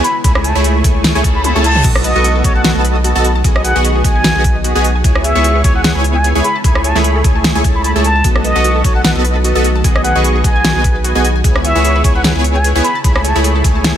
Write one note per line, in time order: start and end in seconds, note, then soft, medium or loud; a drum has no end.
0.00 1.81 C#3 medium
0.00 1.81 E4 medium
0.04 1.83 G#3 medium
0.04 3.41 A3 medium
0.04 0.18 B5 medium
0.04 closed hi-hat medium
0.24 0.53 C#2 medium
0.24 0.53 A3 medium
0.24 0.53 E4 medium
0.24 0.53 G#4 medium
0.24 0.53 C#5 medium
0.24 0.53 G#5 medium
0.24 0.31 B5 medium
0.24 kick loud
0.24 closed hi-hat medium
0.35 0.41 B5 medium
0.35 cross-stick medium
0.44 0.58 A5 medium
0.44 closed hi-hat medium
0.55 0.83 C#2 loud
0.55 0.82 A3 medium
0.55 0.82 E4 medium
0.55 0.82 G#4 medium
0.55 0.82 C#5 medium
0.55 0.82 B5 medium
0.64 closed hi-hat medium
0.84 1.13 C#2 loud
0.84 1.13 A3 medium
0.84 1.13 E4 medium
0.84 1.13 G#4 medium
0.84 1.13 C#5 medium
0.84 1.13 G#5 loud
0.84 kick loud
0.84 closed hi-hat medium
1.04 snare loud
1.04 closed hi-hat medium
1.04 reverse cymbal medium
1.15 1.23 C#2 loud
1.15 1.23 A3 loud
1.15 1.23 E4 medium
1.15 1.23 G#4 medium
1.15 1.23 C#5 medium
1.15 1.23 G#5 loud
1.24 1.53 C#2 loud
1.24 1.53 A3 medium
1.24 1.53 E4 medium
1.24 1.53 G#4 medium
1.24 1.53 C#5 medium
1.24 1.53 A5 medium
1.24 kick loud
1.24 closed hi-hat medium
1.36 1.41 B5 medium
1.44 1.51 B5 medium
1.44 closed hi-hat medium
1.44 high tom medium
1.55 1.83 C#2 medium
1.55 1.67 A3 medium
1.55 1.67 E4 medium
1.55 1.67 G#4 medium
1.55 1.67 C#5 medium
1.55 1.67 A5 loud
1.55 high tom medium
1.64 1.89 A5 medium
1.64 closed hi-hat medium
1.75 mid tom medium
1.84 2.13 B1 loud
1.84 5.01 D#3 medium
1.84 5.01 B3 medium
1.84 2.13 B3 medium
1.84 1.88 F#4 medium
1.84 5.01 F#4 loud
1.84 2.13 F#4 medium
1.84 2.13 A4 medium
1.84 2.13 D#5 medium
1.84 2.13 A5 medium
1.84 kick loud
1.84 closed hi-hat medium
1.84 crash medium
1.95 1.99 A4 medium
1.95 cross-stick medium
2.04 2.10 B4 medium
2.04 2.43 D#5 medium
2.04 closed hi-hat medium
2.15 2.43 B1 loud
2.15 2.42 B3 medium
2.15 2.42 F#4 medium
2.15 2.42 A4 medium
2.15 2.19 D#5 medium
2.15 2.42 D#5 medium
2.15 2.42 C#6 medium
2.24 2.27 F#4 medium
2.24 closed hi-hat medium
2.35 2.39 A4 medium
2.44 2.73 B1 loud
2.44 2.73 B3 medium
2.44 2.48 F#4 medium
2.44 2.73 F#4 medium
2.44 2.73 A4 medium
2.44 2.53 C#5 medium
2.44 2.73 D#5 medium
2.44 2.73 A5 loud
2.44 kick loud
2.44 closed hi-hat medium
2.56 2.61 F#5 medium
2.56 2.60 A5 medium
2.64 2.68 F#4 medium
2.64 2.71 F#5 medium
2.64 snare loud
2.64 closed hi-hat medium
2.75 3.13 B1 loud
2.75 3.13 B3 loud
2.75 3.13 F#4 medium
2.75 2.79 A4 medium
2.75 3.13 A4 medium
2.75 3.13 D#5 medium
2.75 3.13 A5 loud
2.84 2.90 B4 medium
2.84 closed hi-hat medium
2.95 2.99 D#5 medium
3.04 3.07 F#4 medium
3.04 closed hi-hat medium
3.15 3.43 B1 medium
3.15 3.27 B3 loud
3.15 3.27 F#4 medium
3.15 3.19 A4 medium
3.15 3.27 A4 medium
3.15 3.27 D#5 medium
3.15 3.27 A5 loud
3.24 3.28 F#4 medium
3.24 closed hi-hat medium
3.36 3.40 A5 medium
3.44 3.73 B1 medium
3.44 6.41 G#3 medium
3.44 3.73 B3 medium
3.44 3.48 F#4 medium
3.44 3.73 F#4 medium
3.44 3.73 G#4 medium
3.44 3.73 D#5 medium
3.44 3.73 G#5 medium
3.44 kick loud
3.44 closed hi-hat medium
3.56 3.59 G#4 medium
3.56 3.63 D#5 medium
3.56 cross-stick medium
3.64 3.70 B4 medium
3.64 3.78 F#5 medium
3.64 closed hi-hat medium
3.76 4.03 B1 loud
3.76 4.02 B3 medium
3.76 4.02 F#4 medium
3.76 4.02 G#4 medium
3.76 3.79 D#5 medium
3.76 4.02 D#5 medium
3.76 4.02 C#6 medium
3.84 3.87 F#4 medium
3.84 closed hi-hat medium
3.95 3.99 G#4 medium
4.04 4.33 B1 loud
4.04 4.33 B3 medium
4.04 4.08 F#4 medium
4.04 4.33 F#4 medium
4.04 4.33 G#4 medium
4.04 4.33 D#5 medium
4.04 4.61 G#5 loud
4.04 4.33 G#5 loud
4.04 kick loud
4.04 closed hi-hat medium
4.15 4.20 G#5 medium
4.24 4.28 F#4 medium
4.24 snare loud
4.24 closed hi-hat medium
4.36 4.73 B1 loud
4.36 4.73 B3 loud
4.36 4.73 F#4 medium
4.36 4.39 G#4 medium
4.36 4.73 G#4 medium
4.36 4.73 D#5 medium
4.36 4.73 G#5 loud
4.44 4.50 B4 medium
4.44 kick loud
4.44 closed hi-hat medium
4.56 4.59 D#5 medium
4.64 4.67 F#4 medium
4.64 closed hi-hat medium
4.75 5.03 B1 loud
4.75 4.87 B3 loud
4.75 4.87 F#4 medium
4.75 4.87 G#4 medium
4.75 4.79 G#4 medium
4.75 4.87 D#5 medium
4.75 4.87 G#5 loud
4.84 4.88 F#4 medium
4.84 closed hi-hat medium
4.95 5.00 G#5 medium
5.04 5.33 C#2 loud
5.04 5.33 B3 medium
5.04 5.33 E4 medium
5.04 5.08 G#4 medium
5.04 5.33 G#4 medium
5.04 5.33 C#5 medium
5.04 5.33 G#5 medium
5.04 kick loud
5.04 closed hi-hat medium
5.15 5.19 B4 medium
5.15 cross-stick medium
5.24 5.30 C#5 medium
5.24 5.62 E5 medium
5.24 closed hi-hat medium
5.35 5.63 C#2 loud
5.35 5.62 B3 medium
5.35 5.62 E4 medium
5.35 5.62 G#4 medium
5.35 5.62 C#5 medium
5.35 5.39 E5 medium
5.35 5.62 C#6 medium
5.44 5.47 G#4 medium
5.44 closed hi-hat medium
5.55 5.59 B4 medium
5.64 5.93 C#2 medium
5.64 5.93 B3 medium
5.64 5.93 E4 medium
5.64 5.68 G#4 medium
5.64 5.93 G#4 medium
5.64 5.73 C#5 medium
5.64 5.93 C#5 medium
5.64 5.93 G#5 loud
5.64 kick loud
5.64 closed hi-hat medium
5.75 5.81 F#5 medium
5.75 5.80 B5 medium
5.84 5.88 G#4 medium
5.84 5.91 F#5 medium
5.84 snare loud
5.84 closed hi-hat medium
5.95 6.33 C#2 loud
5.95 6.33 B3 loud
5.95 6.33 E4 medium
5.95 6.33 G#4 medium
5.95 5.99 B4 medium
5.95 6.33 C#5 medium
5.95 6.33 G#5 loud
6.04 6.10 C#5 medium
6.04 closed hi-hat medium
6.15 6.19 E5 medium
6.15 6.27 G#5 loud
6.24 6.27 G#4 medium
6.24 closed hi-hat medium
6.35 6.41 C#2 loud
6.35 6.43 B3 medium
6.35 6.43 E4 medium
6.35 6.43 G#4 medium
6.35 6.39 B4 medium
6.35 6.43 C#5 medium
6.35 6.43 G#5 loud
6.44 8.23 C#3 medium
6.44 8.22 G#3 medium
6.44 8.23 A3 medium
6.44 8.22 E4 medium
6.44 6.48 G#4 medium
6.44 6.58 B5 medium
6.44 closed hi-hat medium
6.56 6.60 A5 medium
6.64 6.93 C#2 medium
6.64 6.93 A3 medium
6.64 6.93 E4 medium
6.64 6.93 G#4 medium
6.64 6.68 G#4 medium
6.64 6.93 C#5 medium
6.64 6.93 G#5 medium
6.64 6.71 B5 medium
6.64 kick loud
6.64 closed hi-hat medium
6.75 6.79 A4 medium
6.75 6.81 B5 medium
6.75 cross-stick medium
6.84 6.90 C#5 medium
6.84 6.98 A5 medium
6.84 closed hi-hat medium
6.95 7.23 C#2 loud
6.95 7.22 A3 medium
6.95 7.22 E4 medium
6.95 7.22 G#4 medium
6.95 7.22 C#5 medium
6.95 6.99 E5 medium
6.95 7.22 B5 medium
6.95 snare soft
7.04 7.07 G#4 medium
7.04 closed hi-hat medium
7.16 7.19 A4 medium
7.24 7.53 C#2 loud
7.24 7.53 A3 medium
7.24 7.53 E4 medium
7.24 7.28 G#4 medium
7.24 7.53 G#4 medium
7.24 7.53 C#5 medium
7.24 7.53 G#5 loud
7.24 kick loud
7.24 closed hi-hat medium
7.35 7.40 A5 medium
7.44 7.48 G#4 medium
7.44 snare loud
7.44 closed hi-hat medium
7.55 7.63 C#2 loud
7.55 7.63 A3 loud
7.55 7.63 E4 medium
7.55 7.63 G#4 medium
7.55 7.59 A4 medium
7.55 7.63 C#5 medium
7.55 7.63 G#5 loud
7.64 7.93 C#2 loud
7.64 7.93 A3 medium
7.64 7.93 E4 medium
7.64 7.93 G#4 medium
7.64 7.93 C#5 medium
7.64 7.70 G#5 medium
7.64 7.93 A5 loud
7.64 kick loud
7.64 closed hi-hat medium
7.75 7.81 B5 medium
7.75 7.79 C#6 medium
7.84 7.88 G#5 medium
7.84 7.91 B5 medium
7.84 closed hi-hat medium
7.95 8.23 C#2 medium
7.95 8.07 A3 medium
7.95 8.07 E4 medium
7.95 8.07 G#4 medium
7.95 8.07 C#5 medium
7.95 7.98 E5 medium
7.95 8.07 A5 loud
8.04 8.08 A4 medium
8.04 8.29 A5 loud
8.04 closed hi-hat medium
8.16 8.20 A5 medium
8.24 8.53 B1 medium
8.24 11.41 D#3 medium
8.24 9.83 A3 medium
8.24 12.80 B3 medium
8.24 8.53 B3 medium
8.24 11.41 F#4 loud
8.24 8.53 F#4 medium
8.24 8.28 F#4 medium
8.24 8.53 A4 medium
8.24 8.53 D#5 medium
8.24 8.53 A5 medium
8.24 kick loud
8.24 closed hi-hat medium
8.36 8.39 A4 medium
8.36 cross-stick medium
8.44 8.50 B4 medium
8.44 8.83 D#5 medium
8.44 closed hi-hat medium
8.55 8.83 B1 loud
8.55 8.82 B3 medium
8.55 8.82 F#4 medium
8.55 8.82 A4 medium
8.55 8.59 B4 medium
8.55 8.82 D#5 medium
8.55 8.82 C#6 medium
8.64 8.67 F#4 medium
8.64 closed hi-hat medium
8.76 8.79 A4 medium
8.84 9.13 B1 loud
8.84 9.13 B3 medium
8.84 9.13 F#4 medium
8.84 8.88 F#4 medium
8.84 9.13 A4 medium
8.84 8.93 C#5 medium
8.84 9.13 D#5 medium
8.84 9.13 A5 loud
8.84 kick loud
8.84 closed hi-hat medium
8.96 9.01 F#5 medium
8.96 9.00 A5 medium
9.04 9.08 F#4 medium
9.04 9.11 F#5 medium
9.04 snare loud
9.04 closed hi-hat medium
9.15 9.53 B1 loud
9.15 9.53 B3 medium
9.15 9.53 F#4 medium
9.15 9.19 A4 medium
9.15 9.53 A4 medium
9.15 9.53 D#5 medium
9.15 9.53 A5 loud
9.25 9.30 B4 medium
9.25 closed hi-hat medium
9.36 9.39 B4 medium
9.44 9.47 F#4 medium
9.44 closed hi-hat medium
9.55 9.83 B1 medium
9.55 9.67 B3 medium
9.55 9.67 F#4 medium
9.55 9.67 A4 medium
9.55 9.59 A4 medium
9.55 9.67 D#5 medium
9.55 9.67 A5 loud
9.64 9.68 F#4 medium
9.64 closed hi-hat medium
9.76 9.80 A5 medium
9.84 10.13 B1 loud
9.84 10.13 B3 medium
9.84 10.13 F#4 medium
9.84 9.88 F#4 medium
9.84 13.97 G#4 medium
9.84 10.13 G#4 medium
9.84 10.13 D#5 medium
9.84 10.13 G#5 medium
9.84 kick loud
9.84 closed hi-hat medium
9.95 9.99 G#4 medium
9.95 10.03 D#5 loud
9.95 cross-stick medium
10.04 10.10 B4 medium
10.04 10.18 F#5 medium
10.04 closed hi-hat medium
10.15 10.43 B1 loud
10.15 10.42 B3 medium
10.15 10.42 F#4 medium
10.15 10.42 G#4 medium
10.15 10.19 B4 medium
10.15 10.42 D#5 medium
10.15 10.42 C#6 medium
10.24 10.27 F#4 medium
10.24 closed hi-hat medium
10.36 10.39 G#4 medium
10.44 10.73 B1 loud
10.44 10.73 B3 medium
10.44 10.73 F#4 medium
10.44 10.48 F#4 medium
10.44 10.73 G#4 medium
10.44 10.73 D#5 medium
10.44 10.73 G#5 medium
10.44 11.01 G#5 medium
10.44 kick loud
10.44 closed hi-hat medium
10.56 10.60 G#5 medium
10.64 10.68 F#4 medium
10.64 snare loud
10.64 closed hi-hat medium
10.75 11.13 B1 loud
10.75 11.13 B3 loud
10.75 11.13 F#4 medium
10.75 11.13 G#4 medium
10.75 10.79 G#4 medium
10.75 11.13 D#5 medium
10.75 11.13 G#5 loud
10.84 10.90 B4 medium
10.84 kick loud
10.84 closed hi-hat medium
10.96 10.99 B4 medium
11.04 11.07 F#4 medium
11.04 closed hi-hat medium
11.15 11.43 B1 loud
11.15 11.27 B3 medium
11.15 11.27 F#4 medium
11.15 11.27 G#4 medium
11.15 11.19 G#4 medium
11.15 11.27 D#5 medium
11.15 11.27 G#5 loud
11.24 11.28 F#4 medium
11.24 closed hi-hat medium
11.36 11.40 G#5 medium
11.44 11.73 C#2 medium
11.44 13.97 C#3 medium
11.44 11.73 B3 medium
11.44 11.73 E4 medium
11.44 11.73 G#4 medium
11.44 11.48 G#4 medium
11.44 11.73 C#5 medium
11.44 11.73 G#5 medium
11.44 kick loud
11.44 closed hi-hat medium
11.55 11.59 B4 medium
11.55 cross-stick medium
11.64 11.70 C#5 medium
11.64 12.03 E5 medium
11.64 closed hi-hat medium
11.75 12.03 C#2 loud
11.75 12.02 B3 medium
11.75 12.02 E4 medium
11.75 12.02 G#4 medium
11.75 12.02 C#5 medium
11.75 11.79 C#5 medium
11.75 12.02 C#6 medium
11.84 11.87 G#4 medium
11.84 closed hi-hat medium
11.96 11.99 B4 medium
12.04 12.33 C#2 loud
12.04 12.33 B3 medium
12.04 12.33 E4 medium
12.04 12.33 G#4 medium
12.04 12.08 G#4 medium
12.04 12.33 C#5 medium
12.04 12.13 C#5 loud
12.04 12.33 G#5 medium
12.04 kick loud
12.04 closed hi-hat medium
12.15 12.21 F#5 medium
12.15 12.20 B5 medium
12.24 12.28 G#4 medium
12.24 12.31 F#5 medium
12.24 snare loud
12.24 closed hi-hat medium
12.35 12.73 C#2 loud
12.35 12.73 B3 medium
12.35 12.73 E4 medium
12.35 12.73 G#4 medium
12.35 12.39 B4 medium
12.35 12.73 C#5 medium
12.35 12.73 G#5 loud
12.44 12.50 C#5 medium
12.44 closed hi-hat medium
12.55 12.59 C#5 medium
12.55 12.67 G#5 medium
12.64 12.67 G#4 medium
12.64 closed hi-hat medium
12.75 12.81 C#2 loud
12.75 12.83 B3 loud
12.75 12.83 E4 medium
12.75 12.83 G#4 medium
12.75 12.79 B4 medium
12.75 12.83 C#5 medium
12.75 12.83 G#5 loud
12.84 13.97 A3 medium
12.84 13.97 E4 loud
12.84 12.88 G#4 medium
12.84 12.98 B5 medium
12.84 closed hi-hat medium
12.95 13.00 A5 medium
13.04 13.33 C#2 loud
13.04 13.33 A3 medium
13.04 13.33 E4 medium
13.04 13.08 G#4 medium
13.04 13.33 G#4 medium
13.04 13.33 C#5 medium
13.04 13.33 G#5 medium
13.04 13.11 B5 medium
13.04 kick loud
13.04 closed hi-hat medium
13.15 13.18 A4 medium
13.15 13.21 B5 medium
13.15 cross-stick medium
13.24 13.30 C#5 medium
13.24 13.38 A5 medium
13.24 closed hi-hat medium
13.35 13.63 C#2 loud
13.35 13.62 A3 medium
13.35 13.62 E4 medium
13.35 13.62 G#4 medium
13.35 13.39 C#5 medium
13.35 13.62 C#5 medium
13.35 13.62 B5 medium
13.44 13.47 G#4 medium
13.44 closed hi-hat medium
13.55 13.59 A4 medium
13.64 13.93 C#2 loud
13.64 13.93 A3 medium
13.64 13.93 E4 medium
13.64 13.68 G#4 medium
13.64 13.93 G#4 medium
13.64 13.93 C#5 medium
13.64 13.93 G#5 loud
13.64 kick loud
13.64 closed hi-hat medium
13.75 13.80 A5 medium
13.84 13.88 G#4 medium
13.84 snare loud
13.84 closed hi-hat medium
13.84 high tom medium